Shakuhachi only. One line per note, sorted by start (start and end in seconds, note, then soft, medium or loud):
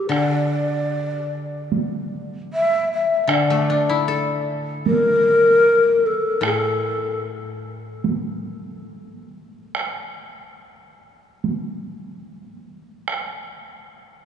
0.11 1.68 D5 medium
2.53 2.88 E5 loud
2.93 3.24 E5 medium
3.24 3.33 E5 medium
3.31 4.47 D5 medium
4.86 6.07 A#4 loud
6.06 6.44 A4 medium
6.44 7.20 A4 medium